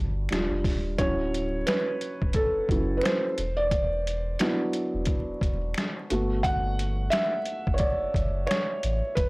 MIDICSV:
0, 0, Header, 1, 4, 480
1, 0, Start_track
1, 0, Tempo, 681818
1, 696, Time_signature, 4, 2, 24, 8
1, 6543, End_track
2, 0, Start_track
2, 0, Title_t, "Felt piano"
2, 0, Program_c, 0, 0
2, 0, Control_c, 0, 64, 127
2, 0, Note_on_c, 0, 55, 59
2, 0, Note_on_c, 0, 62, 58
2, 0, Note_on_c, 0, 66, 71
2, 0, Note_on_c, 0, 71, 93
2, 190, Note_off_c, 0, 71, 0
2, 215, Note_off_c, 0, 55, 0
2, 215, Note_on_c, 0, 55, 54
2, 222, Note_off_c, 0, 62, 0
2, 222, Note_on_c, 0, 62, 51
2, 223, Note_on_c, 0, 65, 66
2, 226, Control_c, 0, 64, 0
2, 232, Note_off_c, 0, 66, 0
2, 362, Control_c, 0, 64, 127
2, 550, Note_off_c, 0, 55, 0
2, 553, Note_off_c, 0, 62, 0
2, 554, Note_off_c, 0, 65, 0
2, 693, Note_on_c, 0, 73, 106
2, 699, Note_on_c, 0, 54, 62
2, 702, Note_on_c, 0, 61, 57
2, 705, Control_c, 0, 64, 0
2, 708, Note_on_c, 0, 64, 67
2, 813, Control_c, 0, 64, 127
2, 1173, Note_on_c, 0, 71, 97
2, 1189, Note_off_c, 0, 73, 0
2, 1390, Note_off_c, 0, 54, 0
2, 1391, Note_off_c, 0, 61, 0
2, 1394, Note_off_c, 0, 64, 0
2, 1658, Note_on_c, 0, 69, 93
2, 1669, Note_off_c, 0, 71, 0
2, 1904, Note_on_c, 0, 54, 46
2, 1906, Note_on_c, 0, 61, 44
2, 1911, Note_on_c, 0, 64, 55
2, 2092, Note_on_c, 0, 71, 75
2, 2109, Note_off_c, 0, 69, 0
2, 2117, Note_off_c, 0, 54, 0
2, 2118, Note_off_c, 0, 61, 0
2, 2120, Note_off_c, 0, 64, 0
2, 2134, Note_on_c, 0, 72, 92
2, 2135, Note_off_c, 0, 71, 0
2, 2385, Control_c, 0, 64, 0
2, 2488, Note_off_c, 0, 72, 0
2, 2495, Control_c, 0, 64, 127
2, 2510, Note_on_c, 0, 74, 105
2, 3097, Note_on_c, 0, 59, 59
2, 3099, Note_on_c, 0, 54, 67
2, 3103, Note_on_c, 0, 62, 58
2, 3104, Note_on_c, 0, 64, 64
2, 3925, Note_off_c, 0, 74, 0
2, 4269, Note_off_c, 0, 54, 0
2, 4269, Note_off_c, 0, 59, 0
2, 4272, Note_off_c, 0, 62, 0
2, 4272, Note_off_c, 0, 64, 0
2, 4296, Note_on_c, 0, 57, 59
2, 4301, Note_on_c, 0, 59, 52
2, 4304, Control_c, 0, 64, 0
2, 4305, Note_on_c, 0, 66, 68
2, 4416, Control_c, 0, 64, 127
2, 4528, Note_on_c, 0, 78, 127
2, 4630, Note_off_c, 0, 57, 0
2, 4633, Note_off_c, 0, 59, 0
2, 4635, Note_off_c, 0, 66, 0
2, 5001, Note_on_c, 0, 76, 112
2, 5027, Note_off_c, 0, 78, 0
2, 5448, Note_on_c, 0, 73, 79
2, 5461, Note_off_c, 0, 76, 0
2, 5480, Note_on_c, 0, 74, 96
2, 5493, Note_off_c, 0, 73, 0
2, 5960, Note_on_c, 0, 73, 93
2, 5983, Note_off_c, 0, 74, 0
2, 6444, Note_on_c, 0, 71, 96
2, 6463, Note_off_c, 0, 73, 0
2, 6465, Control_c, 0, 64, 0
2, 6543, Note_off_c, 0, 71, 0
2, 6543, End_track
3, 0, Start_track
3, 0, Title_t, "Sub bass"
3, 0, Program_c, 1, 38
3, 0, Note_on_c, 1, 31, 82
3, 196, Note_off_c, 1, 31, 0
3, 223, Note_on_c, 1, 27, 114
3, 347, Note_off_c, 1, 27, 0
3, 361, Note_on_c, 1, 29, 81
3, 451, Note_off_c, 1, 29, 0
3, 457, Note_on_c, 1, 27, 93
3, 676, Note_off_c, 1, 27, 0
3, 698, Note_on_c, 1, 26, 106
3, 1149, Note_off_c, 1, 26, 0
3, 1565, Note_on_c, 1, 26, 97
3, 1653, Note_off_c, 1, 26, 0
3, 1803, Note_on_c, 1, 30, 47
3, 1842, Note_off_c, 1, 30, 0
3, 1896, Note_on_c, 1, 30, 93
3, 2116, Note_off_c, 1, 30, 0
3, 2382, Note_on_c, 1, 28, 99
3, 3071, Note_off_c, 1, 28, 0
3, 3480, Note_on_c, 1, 28, 99
3, 3570, Note_off_c, 1, 28, 0
3, 3722, Note_on_c, 1, 28, 48
3, 3761, Note_off_c, 1, 28, 0
3, 3815, Note_on_c, 1, 28, 87
3, 4036, Note_off_c, 1, 28, 0
3, 4304, Note_on_c, 1, 31, 93
3, 4992, Note_off_c, 1, 31, 0
3, 5404, Note_on_c, 1, 30, 88
3, 5493, Note_off_c, 1, 30, 0
3, 5646, Note_on_c, 1, 30, 54
3, 5683, Note_off_c, 1, 30, 0
3, 5738, Note_on_c, 1, 30, 89
3, 5957, Note_off_c, 1, 30, 0
3, 6223, Note_on_c, 1, 33, 91
3, 6347, Note_off_c, 1, 33, 0
3, 6458, Note_on_c, 1, 28, 114
3, 6543, Note_off_c, 1, 28, 0
3, 6543, End_track
4, 0, Start_track
4, 0, Title_t, "Drums"
4, 204, Note_on_c, 9, 26, 76
4, 228, Note_on_c, 9, 42, 73
4, 229, Note_on_c, 9, 38, 102
4, 231, Note_off_c, 9, 26, 0
4, 231, Note_on_c, 9, 26, 76
4, 299, Note_off_c, 9, 42, 0
4, 300, Note_off_c, 9, 38, 0
4, 302, Note_off_c, 9, 26, 0
4, 453, Note_on_c, 9, 36, 89
4, 457, Note_on_c, 9, 46, 51
4, 464, Note_on_c, 9, 38, 39
4, 524, Note_off_c, 9, 36, 0
4, 527, Note_off_c, 9, 46, 0
4, 534, Note_off_c, 9, 38, 0
4, 693, Note_on_c, 9, 42, 92
4, 694, Note_on_c, 9, 36, 103
4, 763, Note_off_c, 9, 42, 0
4, 764, Note_off_c, 9, 36, 0
4, 946, Note_on_c, 9, 42, 71
4, 1017, Note_off_c, 9, 42, 0
4, 1174, Note_on_c, 9, 42, 90
4, 1175, Note_on_c, 9, 26, 69
4, 1185, Note_on_c, 9, 38, 121
4, 1187, Note_off_c, 9, 26, 0
4, 1187, Note_on_c, 9, 26, 95
4, 1245, Note_off_c, 9, 42, 0
4, 1255, Note_off_c, 9, 38, 0
4, 1257, Note_off_c, 9, 26, 0
4, 1416, Note_on_c, 9, 42, 59
4, 1487, Note_off_c, 9, 42, 0
4, 1561, Note_on_c, 9, 36, 95
4, 1631, Note_off_c, 9, 36, 0
4, 1642, Note_on_c, 9, 42, 75
4, 1650, Note_on_c, 9, 36, 92
4, 1712, Note_off_c, 9, 42, 0
4, 1721, Note_off_c, 9, 36, 0
4, 1892, Note_on_c, 9, 36, 89
4, 1907, Note_on_c, 9, 42, 55
4, 1963, Note_off_c, 9, 36, 0
4, 1977, Note_off_c, 9, 42, 0
4, 2122, Note_on_c, 9, 26, 74
4, 2150, Note_on_c, 9, 42, 72
4, 2151, Note_on_c, 9, 38, 98
4, 2153, Note_off_c, 9, 26, 0
4, 2153, Note_on_c, 9, 26, 82
4, 2220, Note_off_c, 9, 42, 0
4, 2221, Note_off_c, 9, 38, 0
4, 2223, Note_off_c, 9, 26, 0
4, 2378, Note_on_c, 9, 42, 73
4, 2448, Note_off_c, 9, 42, 0
4, 2614, Note_on_c, 9, 36, 106
4, 2614, Note_on_c, 9, 42, 88
4, 2684, Note_off_c, 9, 36, 0
4, 2685, Note_off_c, 9, 42, 0
4, 2866, Note_on_c, 9, 42, 70
4, 2937, Note_off_c, 9, 42, 0
4, 3092, Note_on_c, 9, 42, 95
4, 3094, Note_on_c, 9, 26, 66
4, 3103, Note_on_c, 9, 38, 124
4, 3105, Note_off_c, 9, 26, 0
4, 3105, Note_on_c, 9, 26, 99
4, 3163, Note_off_c, 9, 42, 0
4, 3173, Note_off_c, 9, 38, 0
4, 3175, Note_off_c, 9, 26, 0
4, 3332, Note_on_c, 9, 42, 63
4, 3403, Note_off_c, 9, 42, 0
4, 3558, Note_on_c, 9, 42, 80
4, 3569, Note_on_c, 9, 36, 96
4, 3629, Note_off_c, 9, 42, 0
4, 3640, Note_off_c, 9, 36, 0
4, 3811, Note_on_c, 9, 36, 88
4, 3822, Note_on_c, 9, 42, 56
4, 3882, Note_off_c, 9, 36, 0
4, 3892, Note_off_c, 9, 42, 0
4, 4044, Note_on_c, 9, 26, 83
4, 4067, Note_on_c, 9, 42, 72
4, 4068, Note_on_c, 9, 38, 100
4, 4070, Note_off_c, 9, 26, 0
4, 4070, Note_on_c, 9, 26, 82
4, 4137, Note_off_c, 9, 42, 0
4, 4138, Note_off_c, 9, 38, 0
4, 4140, Note_off_c, 9, 26, 0
4, 4297, Note_on_c, 9, 42, 76
4, 4367, Note_off_c, 9, 42, 0
4, 4534, Note_on_c, 9, 36, 112
4, 4536, Note_on_c, 9, 42, 90
4, 4605, Note_off_c, 9, 36, 0
4, 4606, Note_off_c, 9, 42, 0
4, 4782, Note_on_c, 9, 42, 70
4, 4852, Note_off_c, 9, 42, 0
4, 5010, Note_on_c, 9, 42, 96
4, 5016, Note_on_c, 9, 26, 66
4, 5021, Note_on_c, 9, 38, 122
4, 5023, Note_off_c, 9, 26, 0
4, 5023, Note_on_c, 9, 26, 97
4, 5080, Note_off_c, 9, 42, 0
4, 5091, Note_off_c, 9, 38, 0
4, 5093, Note_off_c, 9, 26, 0
4, 5249, Note_on_c, 9, 42, 57
4, 5319, Note_off_c, 9, 42, 0
4, 5400, Note_on_c, 9, 36, 96
4, 5470, Note_off_c, 9, 36, 0
4, 5477, Note_on_c, 9, 42, 80
4, 5490, Note_on_c, 9, 36, 99
4, 5547, Note_off_c, 9, 42, 0
4, 5560, Note_off_c, 9, 36, 0
4, 5732, Note_on_c, 9, 36, 84
4, 5744, Note_on_c, 9, 42, 57
4, 5803, Note_off_c, 9, 36, 0
4, 5815, Note_off_c, 9, 42, 0
4, 5965, Note_on_c, 9, 26, 81
4, 5990, Note_on_c, 9, 42, 78
4, 5991, Note_on_c, 9, 38, 102
4, 5993, Note_off_c, 9, 26, 0
4, 5993, Note_on_c, 9, 26, 75
4, 6060, Note_off_c, 9, 42, 0
4, 6061, Note_off_c, 9, 38, 0
4, 6063, Note_off_c, 9, 26, 0
4, 6218, Note_on_c, 9, 42, 75
4, 6288, Note_off_c, 9, 42, 0
4, 6454, Note_on_c, 9, 42, 88
4, 6455, Note_on_c, 9, 36, 110
4, 6525, Note_off_c, 9, 36, 0
4, 6525, Note_off_c, 9, 42, 0
4, 6543, End_track
0, 0, End_of_file